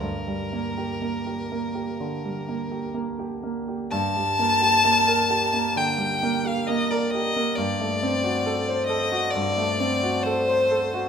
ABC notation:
X:1
M:4/4
L:1/16
Q:1/4=65
K:Gm
V:1 name="Violin"
B12 z4 | a8 g3 f e d e2 | d6 e2 d4 c4 |]
V:2 name="Grand piano"
G,, G, B, G B, G B, G D, G, B, G B, G B, G | G,, G, B, G B, B G B, D, G, B, G B, B G B, | G,, A, C ^F A c A F G,, A, C F A c A F |]